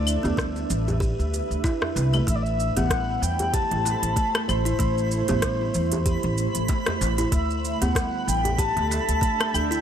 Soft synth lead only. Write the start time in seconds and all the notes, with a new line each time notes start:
Already playing: D5
2.28 E5
2.35 D5
2.42 E5
2.77 F#5
3.22 G5
3.53 A5
4.48 C5
7.33 E5
7.81 F#5
8.28 G5
8.59 A5
9.54 G5